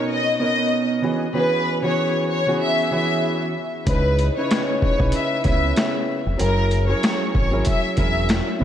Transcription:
0.00 0.36 B2 medium
0.00 0.36 B3 medium
0.00 0.36 C#4 medium
0.00 0.37 D#4 medium
0.00 0.37 A#4 loud
0.09 0.37 D#5 loud
0.39 1.02 B2 medium
0.39 1.01 B3 medium
0.39 1.02 C#4 medium
0.39 1.03 D#4 medium
0.39 1.04 A#4 loud
0.39 0.86 D#5 medium
1.02 1.24 E3 medium
1.02 1.24 B3 medium
1.02 1.24 C#4 medium
1.02 1.25 F#4 medium
1.02 1.25 G#4 medium
1.33 1.79 E3 medium
1.33 1.79 B3 medium
1.33 1.80 C#4 medium
1.33 1.80 F#4 medium
1.33 1.80 G#4 loud
1.33 1.81 B4 loud
1.82 2.40 E3 medium
1.82 2.41 B3 medium
1.82 2.41 C#4 medium
1.82 2.41 F#4 medium
1.82 2.42 G#4 loud
1.82 2.26 C#5 medium
2.29 2.57 C#5 medium
2.46 2.89 E3 medium
2.46 2.89 B3 medium
2.46 2.89 C#4 medium
2.46 2.90 F#4 medium
2.46 2.90 G#4 loud
2.61 2.89 E5 medium
2.91 3.50 E3 loud
2.91 3.51 B3 medium
2.91 3.51 C#4 medium
2.91 3.51 F#4 medium
2.91 3.51 G#4 loud
2.91 3.39 E5 medium
3.86 4.29 C#2 loud
3.86 4.32 C#3 medium
3.86 4.32 C#4 medium
3.86 4.33 D#4 medium
3.86 4.33 E4 medium
3.86 4.33 B4 loud
3.86 kick loud
3.86 closed hi-hat medium
4.19 closed hi-hat medium
4.36 4.94 C#3 medium
4.36 4.94 C#4 medium
4.36 4.94 D#4 medium
4.36 4.95 E4 medium
4.36 4.95 B4 loud
4.36 4.79 C#5 medium
4.51 snare loud
4.51 snare medium
4.51 closed hi-hat medium
4.82 5.10 C#5 medium
4.82 kick medium
4.97 5.11 B1 medium
4.97 5.40 C#3 medium
4.97 5.41 C#4 medium
4.97 5.41 D#4 medium
4.97 5.41 E4 medium
4.97 5.42 B4 loud
4.97 kick medium
5.12 5.42 E5 medium
5.12 closed hi-hat loud
5.44 5.72 C#2 loud
5.44 6.18 C#3 medium
5.44 6.19 B3 medium
5.44 6.18 C#4 medium
5.44 6.19 E4 medium
5.44 6.19 B4 loud
5.44 5.91 E5 medium
5.44 kick loud
5.44 closed hi-hat medium
5.76 snare loud
5.76 snare medium
5.76 closed hi-hat medium
6.26 6.38 F1 medium
6.37 6.93 F#1 loud
6.37 6.84 F#3 medium
6.37 6.84 C#4 medium
6.37 6.84 E4 medium
6.37 6.85 G#4 medium
6.37 6.85 A#4 loud
6.37 6.86 A#4 loud
6.37 closed hi-hat medium
6.71 closed hi-hat medium
6.88 7.46 F#3 medium
6.88 7.46 C#4 medium
6.88 7.46 E4 medium
6.88 7.47 G#4 medium
6.88 7.47 A#4 loud
6.88 7.31 C#5 medium
7.03 snare loud
7.03 snare medium
7.03 closed hi-hat medium
7.34 7.61 G#1 medium
7.34 7.63 C#5 medium
7.34 kick medium
7.51 7.94 F#3 loud
7.51 7.94 C#4 medium
7.51 7.94 E4 medium
7.51 7.94 G#4 medium
7.51 7.95 A#4 loud
7.65 7.94 E5 medium
7.65 kick medium
7.65 closed hi-hat loud
7.97 8.39 E1 loud
7.97 8.56 F#3 medium
7.97 8.56 C#4 medium
7.97 8.56 E4 medium
7.97 8.57 G#4 medium
7.97 8.57 A#4 loud
7.97 8.44 E5 medium
7.97 kick loud
7.97 closed hi-hat medium
8.29 snare loud
8.29 snare medium
8.29 closed hi-hat medium
8.59 8.64 B2 medium
8.59 8.64 B3 medium
8.59 8.64 C#4 medium
8.59 8.64 D#4 medium
8.59 8.64 A#4 medium

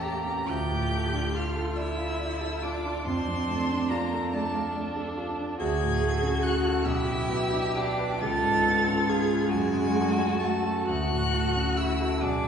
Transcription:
0.00 0.44 A1 medium
0.00 0.51 E2 medium
0.00 0.51 A3 medium
0.00 0.48 A#3 medium
0.00 0.26 C#4 medium
0.00 0.03 G4 medium
0.00 0.47 G4 medium
0.00 0.40 G4 medium
0.00 0.50 A4 medium
0.00 0.51 C#5 medium
0.00 0.51 G5 medium
0.00 0.50 A#5 medium
0.26 0.48 C#4 medium
0.48 3.01 D2 medium
0.48 3.06 F4 medium
0.48 1.36 G4 loud
0.48 1.36 G6 loud
0.71 1.05 A2 medium
0.92 1.26 A3 medium
1.13 1.47 D4 medium
1.35 1.69 F4 medium
1.35 1.77 F4 medium
1.35 1.79 F6 medium
1.56 1.90 A4 medium
1.76 2.65 E4 loud
1.76 2.11 D5 medium
1.76 2.64 E6 loud
1.97 2.32 F5 medium
2.20 2.54 D5 medium
2.41 2.75 A4 medium
2.62 3.05 D4 medium
2.62 2.97 F4 medium
2.62 3.05 D6 medium
2.85 3.06 D4 medium
3.05 5.55 F2 medium
3.05 3.92 C4 medium
3.05 4.32 D4 medium
3.05 3.92 C6 loud
3.28 3.61 F3 medium
3.48 3.82 A3 medium
3.70 4.04 D4 medium
3.90 4.32 A#3 medium
3.90 4.24 F4 medium
3.90 4.35 A#5 loud
4.13 4.46 A4 medium
4.31 4.74 A3 medium
4.31 5.56 D4 medium
4.31 4.67 D5 medium
4.31 4.75 A5 medium
4.54 4.88 F5 medium
4.76 5.09 D5 medium
4.97 5.30 A4 medium
5.18 5.51 F4 medium
5.39 5.59 D4 medium
5.58 6.81 D2 medium
5.58 6.86 F#4 medium
5.58 6.44 G#4 loud
5.58 6.44 G#6 loud
5.82 6.14 A2 medium
6.02 6.35 A3 medium
6.23 6.55 C#4 medium
6.42 6.84 F#4 medium
6.42 6.76 F#4 medium
6.42 6.86 F#6 loud
6.65 6.85 A4 medium
6.84 8.17 B1 medium
6.84 7.77 E4 loud
6.84 8.21 G4 medium
6.84 7.76 E6 loud
7.07 7.43 B2 medium
7.29 7.66 B3 medium
7.52 7.89 D4 medium
7.75 8.23 D4 loud
7.75 8.12 G4 medium
7.75 8.22 D6 loud
7.98 8.21 B4 medium
8.21 9.47 C#2 medium
8.21 9.51 F4 medium
8.21 9.09 A4 loud
8.21 9.10 A6 loud
8.43 8.78 G#2 medium
8.66 9.00 B3 medium
8.88 9.21 C#4 medium
9.07 9.43 F4 medium
9.07 9.49 G#4 medium
9.07 9.49 G#6 loud
9.30 9.51 B4 medium
9.49 10.84 F#2 medium
9.49 10.41 G#3 loud
9.49 10.86 F#4 medium
9.49 10.41 G#5 loud
9.73 10.08 C#3 medium
9.95 10.31 A3 medium
10.18 10.55 C#4 medium
10.40 10.86 A3 medium
10.40 10.78 F#4 medium
10.40 10.86 A5 loud
10.64 10.87 A4 medium
10.86 12.18 D2 medium
10.86 11.78 F#4 loud
10.86 12.23 F#4 medium
10.86 11.78 F#6 loud
11.11 11.46 A2 medium
11.33 11.69 A3 medium
11.56 11.91 C#4 medium
11.76 12.23 E4 medium
11.76 12.13 F#4 medium
11.76 12.23 E6 loud
12.00 12.22 A4 medium
12.21 12.48 B1 medium
12.21 12.48 D4 medium
12.21 12.48 G#4 medium
12.21 12.48 D6 loud
12.44 12.48 F#2 medium

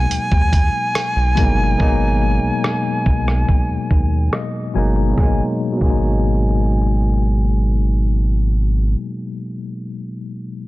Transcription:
0.00 1.35 B2 medium
0.00 1.36 F#3 medium
0.00 1.37 G#3 medium
0.00 1.39 A#3 medium
0.00 1.39 D#4 medium
0.00 4.34 G#5 loud
0.11 0.19 D#2 soft
0.11 closed hi-hat medium
0.32 0.70 D#2 medium
0.32 kick medium
0.53 kick medium
0.53 closed hi-hat medium
0.95 cross-stick loud
0.95 closed hi-hat medium
1.16 1.35 B1 medium
1.35 1.76 G1 medium
1.35 1.74 B2 medium
1.35 1.74 F#3 medium
1.35 1.75 G#3 medium
1.35 1.75 A#3 medium
1.35 kick medium
1.35 closed hi-hat medium
1.39 1.76 D#4 medium
1.78 2.39 G#1 medium
1.78 3.28 B2 medium
1.78 3.29 F#3 medium
1.78 3.29 G#3 medium
1.78 3.30 A#3 medium
1.78 kick loud
1.82 3.31 D#4 medium
2.44 2.52 B1 soft
2.64 cross-stick loud
3.06 3.45 B1 medium
3.06 kick medium
3.28 cross-stick medium
3.49 kick medium
3.70 3.79 D#2 soft
3.91 4.29 D#2 loud
3.91 kick medium
4.33 4.72 D#5 medium
4.33 cross-stick loud
4.74 5.14 G1 medium
4.74 5.08 B2 medium
4.74 5.12 F#3 medium
4.74 5.13 G#3 medium
4.74 5.14 A#3 medium
4.74 5.15 G#5 medium
4.78 5.14 D#4 medium
5.09 5.37 B2 medium
5.14 5.39 F#3 medium
5.18 5.41 G#1 loud
5.18 5.41 G#3 medium
5.18 5.42 G#5 medium
5.18 kick loud
5.18 snare medium
5.22 5.44 A#3 medium
5.26 5.46 D#4 medium
5.72 8.87 B2 medium
5.77 8.91 F#3 medium
5.81 8.95 G#1 medium
5.81 8.95 G#3 medium
5.81 8.97 G#5 medium
5.81 kick medium
5.81 crash medium
5.86 9.00 A#3 medium
5.90 9.04 D#4 medium

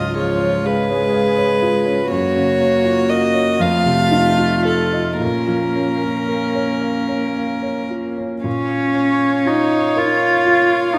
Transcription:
0.00 2.09 C#2 soft
0.00 2.14 G#2 soft
0.00 0.19 F#3 soft
0.00 1.86 C#4 soft
0.00 0.31 F4 soft
0.00 0.68 F4 soft
0.00 0.16 D#5 medium
0.15 0.66 F3 soft
0.15 0.55 G#4 soft
0.15 0.67 C#5 medium
0.39 0.79 C#5 soft
0.65 2.09 G#3 medium
0.65 2.10 G#4 soft
0.65 2.11 B4 medium
0.65 1.05 F5 soft
0.89 1.29 C#5 soft
1.14 1.53 F5 soft
1.37 1.77 C#5 soft
1.62 2.02 F4 soft
1.86 2.11 C#4 soft
2.10 3.56 F#2 soft
2.10 3.62 A#3 medium
2.10 3.61 F#4 medium
2.10 3.11 C#5 medium
2.36 2.76 C#3 soft
2.61 3.01 C#4 soft
2.85 3.25 F4 soft
3.09 3.50 A#4 soft
3.09 3.63 D#5 medium
3.34 3.60 C#5 soft
3.59 5.17 F2 medium
3.59 5.20 A3 medium
3.59 5.22 F4 medium
3.59 4.65 F5 medium
3.86 4.29 C3 soft
4.12 4.55 D#4 soft
4.38 4.82 F4 soft
4.65 5.10 A4 soft
4.65 5.19 A4 medium
4.93 5.21 D#5 soft
5.20 8.41 A#2 soft
5.20 8.20 A#3 soft
5.20 8.24 C#4 soft
5.20 7.88 A#4 medium
5.47 5.92 F3 soft
5.75 6.19 C#4 soft
6.03 6.46 F4 soft
6.28 6.72 A#4 soft
6.55 6.99 C#5 soft
6.81 7.26 F5 soft
7.08 7.53 C#5 soft
7.36 7.81 F5 soft
7.62 8.08 C#5 soft
7.90 8.34 F4 soft
8.18 8.45 C#4 soft
8.44 10.99 A#2 soft
8.44 9.49 C#4 medium
8.44 10.99 C#5 medium
8.44 10.99 F5 soft
8.95 9.76 C#4 soft
9.46 10.00 D#4 medium
9.46 10.26 F4 soft
9.96 10.95 F4 medium
9.96 10.76 A#4 soft
10.46 10.99 F4 soft
10.94 10.99 C#4 soft
10.94 10.99 D#4 medium

